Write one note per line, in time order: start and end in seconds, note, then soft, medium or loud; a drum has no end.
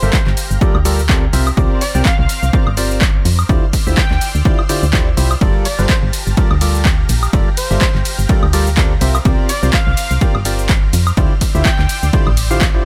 0.00 0.11 G1 loud
0.00 0.18 G3 medium
0.00 0.18 F4 medium
0.00 1.30 G4 medium
0.00 0.18 G4 medium
0.00 0.18 A4 medium
0.00 0.18 A#4 medium
0.00 0.27 C5 loud
0.00 0.18 E5 medium
0.00 1.30 F5 medium
0.00 1.32 G5 medium
0.00 3.45 A#5 medium
0.00 shaker soft
0.13 kick loud
0.13 clap loud
0.13 shaker soft
0.27 0.35 G1 loud
0.27 clap soft
0.37 open hi-hat loud
0.37 shaker medium
0.51 0.59 G1 medium
0.51 shaker soft
0.61 0.77 G3 medium
0.61 0.77 F4 medium
0.61 0.77 G4 medium
0.61 0.77 A4 medium
0.61 0.77 A#4 medium
0.61 0.77 D5 loud
0.61 kick loud
0.61 shaker soft
0.75 1.29 D2 loud
0.75 high woodblock medium
0.85 1.01 G3 loud
0.85 1.01 F4 medium
0.85 1.01 G4 medium
0.85 1.01 A4 medium
0.85 1.01 A#4 medium
0.85 1.01 D5 loud
0.85 open hi-hat loud
0.85 shaker medium
0.99 shaker soft
1.09 1.25 C4 medium
1.09 1.25 F4 medium
1.09 1.25 G4 medium
1.09 1.25 A4 medium
1.09 1.25 A#4 medium
1.09 1.25 D5 loud
1.09 kick loud
1.09 clap loud
1.09 shaker soft
1.33 1.52 C2 medium
1.33 1.49 C4 medium
1.33 1.49 F4 medium
1.33 1.49 G4 medium
1.33 1.49 A#4 medium
1.33 1.49 C5 medium
1.33 3.47 C5 medium
1.33 1.49 E5 medium
1.33 3.47 D6 medium
1.33 3.47 F6 loud
1.33 open hi-hat loud
1.33 shaker medium
1.47 high woodblock medium
1.47 shaker soft
1.57 1.67 C2 loud
1.57 1.83 C4 medium
1.57 1.83 F4 medium
1.57 1.83 G4 medium
1.57 1.83 A#4 medium
1.57 1.83 C5 medium
1.57 1.83 D5 loud
1.57 kick loud
1.57 shaker soft
1.81 1.92 D5 medium
1.81 open hi-hat loud
1.81 shaker medium
1.95 2.03 C2 loud
1.95 2.10 C4 medium
1.95 2.10 F4 medium
1.95 2.10 G4 medium
1.95 2.10 A#4 medium
1.95 2.10 C5 medium
1.95 2.10 D5 loud
1.95 shaker soft
2.05 2.14 F5 loud
2.05 kick loud
2.05 clap loud
2.05 shaker soft
2.19 2.27 C2 loud
2.19 2.26 F5 medium
2.29 2.47 F5 medium
2.29 open hi-hat loud
2.29 shaker medium
2.43 2.51 C2 medium
2.43 shaker soft
2.53 2.69 C4 medium
2.53 2.69 F4 medium
2.53 2.69 G4 medium
2.53 2.69 A#4 medium
2.53 2.69 C5 medium
2.53 2.69 D5 medium
2.53 kick loud
2.53 shaker soft
2.67 3.21 G1 loud
2.67 high woodblock medium
2.77 3.03 C4 medium
2.77 3.03 F4 medium
2.77 3.03 G4 medium
2.77 3.03 A#4 medium
2.77 3.03 C5 medium
2.77 3.03 D5 medium
2.77 open hi-hat loud
2.77 shaker medium
2.91 shaker soft
3.01 kick loud
3.01 clap loud
3.01 shaker soft
3.25 3.44 F2 medium
3.25 open hi-hat loud
3.25 shaker medium
3.39 high woodblock medium
3.39 shaker soft
3.49 3.59 D2 loud
3.49 3.65 D3 medium
3.49 3.65 E4 medium
3.49 3.65 F4 medium
3.49 3.65 G4 medium
3.49 3.65 C5 medium
3.49 5.39 D5 medium
3.49 3.65 D5 medium
3.49 5.39 C6 medium
3.49 5.39 E6 medium
3.49 5.39 F6 medium
3.49 5.39 G6 loud
3.49 kick loud
3.49 shaker soft
3.73 kick medium
3.73 open hi-hat loud
3.73 shaker medium
3.87 3.95 D2 loud
3.87 4.02 D3 medium
3.87 4.02 E4 medium
3.87 4.02 F4 medium
3.87 4.02 G4 medium
3.87 4.02 C5 medium
3.87 4.02 E5 medium
3.87 shaker soft
3.97 4.35 G5 loud
3.97 kick loud
3.97 clap loud
3.97 shaker soft
4.11 4.19 D2 loud
4.11 clap soft
4.21 open hi-hat loud
4.21 shaker medium
4.35 4.43 D2 medium
4.35 shaker soft
4.45 4.61 D3 medium
4.45 4.61 E4 medium
4.45 4.61 F4 medium
4.45 4.61 G4 medium
4.45 4.61 C5 medium
4.45 4.61 D5 loud
4.45 kick loud
4.45 shaker soft
4.59 high woodblock medium
4.69 4.85 D3 medium
4.69 4.85 E4 medium
4.69 4.85 F4 medium
4.69 4.85 G4 medium
4.69 4.85 C5 medium
4.69 4.85 D5 loud
4.69 open hi-hat loud
4.69 shaker medium
4.83 5.13 D2 medium
4.83 shaker soft
4.93 5.09 D3 medium
4.93 5.09 E4 medium
4.93 5.09 F4 medium
4.93 5.09 G4 medium
4.93 5.09 C5 medium
4.93 5.09 D5 loud
4.93 kick loud
4.93 clap loud
4.93 shaker soft
5.17 5.36 C2 loud
5.17 5.33 E4 medium
5.17 5.33 F4 medium
5.17 5.33 G4 medium
5.17 5.33 C5 medium
5.17 5.33 E5 medium
5.17 open hi-hat loud
5.17 shaker medium
5.31 high woodblock medium
5.31 shaker soft
5.41 5.51 G1 loud
5.41 5.67 G3 medium
5.41 5.67 F4 medium
5.41 5.67 G4 medium
5.41 8.98 G4 medium
5.41 5.67 A4 medium
5.41 5.67 A#4 medium
5.41 5.67 D5 loud
5.41 8.98 F5 medium
5.41 7.31 A5 medium
5.41 11.13 A#5 loud
5.41 kick loud
5.41 ride medium
5.41 shaker soft
5.65 5.76 D5 medium
5.65 open hi-hat loud
5.65 ride medium
5.65 shaker medium
5.79 5.87 G1 loud
5.79 5.94 G3 medium
5.79 5.94 F4 medium
5.79 5.94 G4 medium
5.79 5.94 A4 medium
5.79 5.94 A#4 medium
5.79 5.95 C5 loud
5.79 5.94 D5 medium
5.79 shaker soft
5.89 kick loud
5.89 clap loud
5.89 ride medium
5.89 shaker soft
6.03 6.11 G1 loud
6.13 open hi-hat loud
6.13 ride medium
6.13 shaker medium
6.27 6.35 G1 medium
6.27 shaker soft
6.37 6.53 G3 medium
6.37 6.53 F4 medium
6.37 6.53 G4 medium
6.37 6.53 A4 medium
6.37 6.53 A#4 medium
6.37 6.53 D5 medium
6.37 kick loud
6.37 ride medium
6.37 shaker soft
6.51 7.05 D2 loud
6.51 high woodblock medium
6.61 6.87 G3 medium
6.61 6.87 F4 medium
6.61 6.87 G4 medium
6.61 6.87 A4 medium
6.61 6.87 A#4 medium
6.61 6.87 D5 medium
6.61 open hi-hat loud
6.61 ride medium
6.61 shaker medium
6.75 shaker soft
6.85 kick loud
6.85 clap loud
6.85 ride medium
6.85 shaker soft
7.09 7.28 A#1 medium
7.09 open hi-hat loud
7.09 ride medium
7.09 shaker medium
7.23 high woodblock medium
7.23 shaker soft
7.33 7.43 G1 loud
7.33 7.49 G3 medium
7.33 7.49 F4 medium
7.33 7.49 G4 medium
7.33 7.49 A4 medium
7.33 7.49 A#4 medium
7.33 7.49 D5 medium
7.33 8.99 G5 medium
7.33 kick loud
7.33 ride medium
7.33 shaker soft
7.57 7.95 C5 loud
7.57 open hi-hat loud
7.57 ride medium
7.57 shaker medium
7.71 7.79 G1 loud
7.71 7.86 G3 medium
7.71 7.86 F4 medium
7.71 7.86 G4 medium
7.71 7.86 A4 medium
7.71 7.86 A#4 medium
7.71 7.86 E5 medium
7.71 shaker soft
7.81 kick loud
7.81 clap loud
7.81 ride medium
7.81 shaker soft
7.95 8.03 G1 loud
7.95 clap soft
8.05 open hi-hat loud
8.05 ride medium
8.05 shaker medium
8.19 8.27 G1 medium
8.19 shaker soft
8.29 8.45 G3 loud
8.29 8.45 F4 medium
8.29 8.45 G4 medium
8.29 8.45 A4 medium
8.29 8.45 A#4 medium
8.29 8.45 D5 loud
8.29 kick loud
8.29 ride medium
8.29 shaker soft
8.43 8.97 D2 loud
8.43 high woodblock medium
8.53 8.69 G3 loud
8.53 8.69 F4 medium
8.53 8.69 G4 medium
8.53 8.69 A4 medium
8.53 8.69 A#4 medium
8.53 8.69 D5 loud
8.53 open hi-hat loud
8.53 ride medium
8.53 shaker medium
8.67 shaker soft
8.77 8.93 C4 medium
8.77 8.93 F4 medium
8.77 8.93 G4 medium
8.77 8.93 A4 medium
8.77 8.93 A#4 medium
8.77 8.93 D5 loud
8.77 kick loud
8.77 clap loud
8.77 ride medium
8.77 shaker soft
9.01 9.20 C2 medium
9.01 9.17 C4 medium
9.01 9.17 F4 medium
9.01 9.17 G4 medium
9.01 9.17 A#4 medium
9.01 9.17 C5 medium
9.01 11.15 C5 medium
9.01 9.17 E5 medium
9.01 11.15 D6 medium
9.01 12.85 F6 medium
9.01 open hi-hat loud
9.01 ride medium
9.01 shaker medium
9.15 high woodblock medium
9.15 shaker soft
9.25 9.35 C2 loud
9.25 9.51 C4 medium
9.25 9.51 F4 medium
9.25 9.51 G4 medium
9.25 9.51 A#4 medium
9.25 9.51 C5 medium
9.25 9.51 D5 loud
9.25 kick loud
9.25 ride medium
9.25 shaker soft
9.49 9.60 D5 loud
9.49 open hi-hat loud
9.49 ride medium
9.49 shaker medium
9.63 9.71 C2 loud
9.63 9.78 C4 medium
9.63 9.78 F4 medium
9.63 9.78 G4 medium
9.63 9.78 A#4 medium
9.63 9.78 C5 medium
9.63 9.78 D5 loud
9.63 shaker soft
9.73 9.82 F5 medium
9.73 kick loud
9.73 clap loud
9.73 ride medium
9.73 shaker soft
9.87 9.95 C2 loud
9.87 9.93 F5 medium
9.97 10.15 F5 medium
9.97 open hi-hat loud
9.97 ride medium
9.97 shaker medium
10.11 10.19 C2 medium
10.11 shaker soft
10.21 10.37 C4 medium
10.21 10.37 F4 medium
10.21 10.37 G4 medium
10.21 10.37 A#4 medium
10.21 10.37 C5 medium
10.21 10.37 D5 medium
10.21 kick loud
10.21 ride medium
10.21 shaker soft
10.35 10.89 G1 loud
10.35 high woodblock medium
10.45 10.71 C4 medium
10.45 10.71 F4 medium
10.45 10.71 G4 medium
10.45 10.71 A#4 medium
10.45 10.71 C5 medium
10.45 10.71 D5 medium
10.45 open hi-hat loud
10.45 ride medium
10.45 shaker medium
10.59 shaker soft
10.69 kick loud
10.69 clap loud
10.69 ride medium
10.69 shaker soft
10.93 11.12 F2 medium
10.93 open hi-hat loud
10.93 ride medium
10.93 shaker medium
11.07 high woodblock medium
11.07 shaker soft
11.17 11.27 D2 loud
11.17 11.33 D3 medium
11.17 11.33 E4 medium
11.17 11.33 F4 medium
11.17 11.33 G4 medium
11.17 11.33 C5 medium
11.17 12.85 D5 medium
11.17 11.33 D5 medium
11.17 12.85 C6 medium
11.17 12.85 E6 medium
11.17 12.85 G6 loud
11.17 kick loud
11.17 ride medium
11.17 shaker soft
11.41 kick medium
11.41 open hi-hat loud
11.41 ride medium
11.41 shaker medium
11.55 11.63 D2 loud
11.55 11.70 D3 medium
11.55 11.70 E4 medium
11.55 11.70 F4 medium
11.55 11.70 G4 medium
11.55 11.70 C5 medium
11.55 11.70 E5 medium
11.55 shaker soft
11.65 12.03 G5 loud
11.65 kick loud
11.65 clap loud
11.65 ride medium
11.65 shaker soft
11.79 11.87 D2 loud
11.79 clap soft
11.89 open hi-hat loud
11.89 ride medium
11.89 shaker medium
12.03 12.11 D2 medium
12.03 shaker soft
12.13 12.29 D3 medium
12.13 12.29 E4 medium
12.13 12.29 F4 medium
12.13 12.29 G4 medium
12.13 12.29 C5 medium
12.13 12.29 D5 loud
12.13 kick loud
12.13 ride medium
12.13 shaker soft
12.27 12.81 A1 loud
12.27 high woodblock medium
12.37 open hi-hat loud
12.37 ride medium
12.37 shaker medium
12.51 12.66 D3 loud
12.51 12.66 E4 medium
12.51 12.66 F4 medium
12.51 12.66 G4 medium
12.51 12.66 C5 medium
12.51 12.66 F5 loud
12.51 shaker soft
12.61 kick loud
12.61 clap loud
12.61 ride medium
12.61 shaker soft
12.75 12.84 D3 medium
12.75 12.84 E4 medium
12.75 12.84 F4 medium
12.75 12.84 G4 medium
12.75 12.84 C5 medium
12.75 12.84 D5 medium